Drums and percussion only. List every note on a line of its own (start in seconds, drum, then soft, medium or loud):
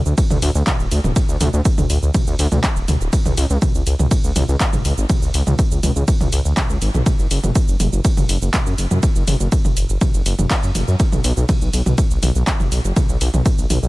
0.06 shaker soft
0.18 kick loud
0.18 ride medium
0.18 shaker medium
0.30 mid tom loud
0.30 shaker soft
0.42 open hi-hat loud
0.42 shaker medium
0.55 shaker soft
0.67 kick loud
0.67 clap loud
0.67 mid tom loud
0.67 ride medium
0.67 shaker medium
0.80 shaker soft
0.91 open hi-hat loud
0.91 shaker medium
1.04 mid tom loud
1.04 shaker soft
1.16 kick loud
1.16 ride medium
1.16 shaker medium
1.29 shaker soft
1.41 mid tom loud
1.41 open hi-hat loud
1.41 shaker medium
1.53 shaker soft
1.65 kick loud
1.65 ride medium
1.65 shaker medium
1.78 mid tom loud
1.78 shaker soft
1.90 open hi-hat medium
1.90 shaker medium
2.03 shaker soft
2.14 kick loud
2.14 mid tom loud
2.14 ride medium
2.14 shaker medium
2.27 shaker soft
2.39 open hi-hat loud
2.39 shaker medium
2.52 mid tom loud
2.52 shaker soft
2.64 kick loud
2.64 clap loud
2.64 ride medium
2.64 shaker medium
2.76 shaker soft
2.88 mid tom loud
2.88 open hi-hat medium
2.88 shaker medium
3.01 shaker soft
3.13 kick loud
3.13 ride medium
3.13 shaker medium
3.26 mid tom medium
3.26 shaker soft
3.37 open hi-hat loud
3.37 shaker medium
3.50 shaker soft
3.62 kick loud
3.62 mid tom loud
3.62 ride medium
3.62 shaker medium
3.75 shaker soft
3.87 open hi-hat medium
3.87 shaker medium
3.99 mid tom medium
3.99 shaker soft
4.11 kick loud
4.11 ride medium
4.11 shaker medium
4.24 shaker soft
4.36 mid tom loud
4.36 open hi-hat loud
4.36 shaker medium
4.49 shaker soft
4.60 kick loud
4.60 clap loud
4.60 ride medium
4.60 shaker medium
4.73 mid tom loud
4.73 shaker soft
4.85 open hi-hat medium
4.85 shaker medium
4.98 shaker soft
5.10 kick loud
5.10 mid tom medium
5.10 ride medium
5.10 shaker medium
5.22 shaker soft
5.34 open hi-hat loud
5.34 shaker medium
5.47 mid tom medium
5.47 shaker soft
5.59 kick loud
5.59 ride medium
5.59 shaker medium
5.71 shaker soft
5.83 mid tom loud
5.83 open hi-hat medium
5.83 shaker medium
5.96 shaker soft
6.08 kick loud
6.08 ride medium
6.08 shaker medium
6.21 mid tom medium
6.21 shaker soft
6.32 open hi-hat loud
6.32 shaker medium
6.45 shaker soft
6.57 kick loud
6.57 clap loud
6.57 mid tom medium
6.57 ride medium
6.57 shaker medium
6.70 shaker soft
6.82 open hi-hat medium
6.82 shaker medium
6.94 mid tom medium
6.94 shaker soft
7.06 kick loud
7.06 mid tom medium
7.06 ride medium
7.06 shaker medium
7.19 shaker soft
7.31 open hi-hat loud
7.31 shaker medium
7.44 mid tom medium
7.44 shaker soft
7.55 kick loud
7.55 ride medium
7.55 shaker medium
7.68 shaker soft
7.80 mid tom medium
7.80 open hi-hat medium
7.80 shaker medium
7.93 shaker soft
8.05 kick loud
8.05 ride medium
8.05 shaker medium
8.17 mid tom medium
8.17 shaker soft
8.29 open hi-hat loud
8.29 shaker medium
8.42 shaker soft
8.54 kick loud
8.54 clap loud
8.54 mid tom medium
8.54 ride medium
8.54 shaker medium
8.66 shaker soft
8.78 open hi-hat medium
8.78 shaker medium
8.91 mid tom medium
8.91 shaker soft
9.03 kick loud
9.03 ride medium
9.03 shaker medium
9.16 shaker soft
9.28 mid tom medium
9.28 open hi-hat loud
9.28 shaker medium
9.40 shaker soft
9.52 kick loud
9.52 ride medium
9.52 shaker medium
9.65 mid tom medium
9.65 shaker soft
9.77 open hi-hat loud
9.77 shaker medium
9.89 shaker soft
10.01 kick loud
10.01 mid tom medium
10.01 ride medium
10.01 shaker medium
10.14 shaker soft
10.26 open hi-hat loud
10.26 shaker medium
10.39 mid tom medium
10.39 shaker soft
10.50 kick loud
10.50 clap loud
10.50 ride medium
10.50 shaker medium
10.63 shaker soft
10.75 mid tom medium
10.75 open hi-hat loud
10.75 shaker medium
10.88 shaker soft
11.00 kick loud
11.00 ride medium
11.00 shaker medium
11.12 mid tom medium
11.12 shaker soft
11.24 open hi-hat loud
11.24 shaker medium
11.37 shaker soft
11.49 kick loud
11.49 mid tom loud
11.49 ride medium
11.49 shaker medium
11.62 shaker soft
11.73 open hi-hat loud
11.73 shaker medium
11.86 mid tom medium
11.86 shaker soft
11.98 kick loud
11.98 ride medium
11.98 shaker medium
12.11 shaker soft
12.23 mid tom medium
12.23 open hi-hat loud
12.23 shaker medium
12.35 shaker soft
12.47 kick loud
12.47 clap loud
12.47 ride medium
12.47 shaker medium
12.60 mid tom medium
12.60 shaker soft
12.72 open hi-hat loud
12.72 shaker medium
12.85 shaker soft
12.96 kick loud
12.96 mid tom medium
12.96 ride medium
12.96 shaker medium
13.09 shaker soft
13.21 open hi-hat loud
13.21 shaker medium
13.34 mid tom loud
13.34 shaker soft
13.46 kick loud
13.46 ride medium
13.46 shaker medium
13.58 shaker soft
13.70 mid tom loud
13.70 open hi-hat loud
13.70 shaker medium
13.83 shaker soft